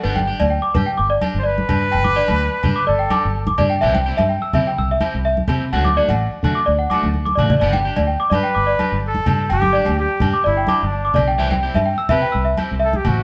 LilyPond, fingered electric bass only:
\new Staff \with { instrumentName = "Fingered electric bass" } { \clef bass \time 4/4 \key g \major \tempo 4 = 127 g,,8. d,8 r16 g,16 r16 g,,8 r16 g,,8. g,8 | g,,8. d,8 r16 g,16 r16 g,,8 r16 g,,8. g,8 | c,8. g,8 r16 c16 r16 c,8 r16 c,8. c8 | d,8. a,,8 r16 d16 r16 d,8 r16 d,8. a,,8 |
g,,8. d,8 r16 g,16 r16 g,,8 r16 g,,8. g,8 | g,,8. d,8 r16 g,16 r16 g,,8 r16 g,,8. b,,8 | c,8. g,8 r16 c16 r16 c,8 r16 c,8. a,,8 | }